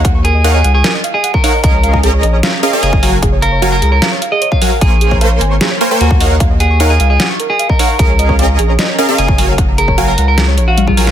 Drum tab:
HH |x-x-x-x-x-x-x-o-|x-x-x-x-x-x-x-o-|x-x-x-x-x-x-x-o-|x-x-x-x-x-x-x-o-|
SD |--------o-------|--------o-------|--------o-------|--------o-------|
T1 |----------------|----------------|----------------|----------------|
BD |o------------o--|o--o---------o--|o------------o--|o--o---------o--|

HH |x-x-x-x-x-x-x-o-|x-x-x-x-x-x-x-o-|x-x-x-x-x-x-x-o-|
SD |--------o-------|--------o-------|--------o------o|
T1 |----------------|----------------|------------oo--|
BD |o------------o--|o--o---------o--|o--o---------o--|